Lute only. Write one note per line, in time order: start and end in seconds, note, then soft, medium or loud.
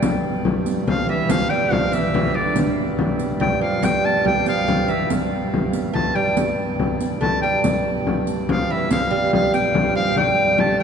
0.88 1.09 F3 medium
1.09 1.30 E3 medium
1.29 1.50 F3 medium
1.50 1.71 G3 medium
1.71 1.93 F3 medium
1.92 2.13 E3 medium
2.14 2.34 E3 medium
2.34 2.54 D3 medium
3.40 3.61 G3 medium
3.61 3.81 F3 medium
3.82 4.24 G3 medium
4.25 4.47 G3 medium
4.48 4.67 F3 medium
4.68 4.90 F3 medium
4.88 5.08 E3 medium
5.93 6.16 A3 medium
6.16 6.35 G3 medium
7.21 7.43 A3 medium
7.43 7.63 G3 medium
8.49 8.70 F3 medium
8.70 8.92 E3 medium
8.91 9.10 F3 medium
9.11 9.52 G3 medium
9.53 9.95 G3 medium
9.95 10.16 F3 medium
10.17 10.60 G3 medium
10.58 10.80 A3 medium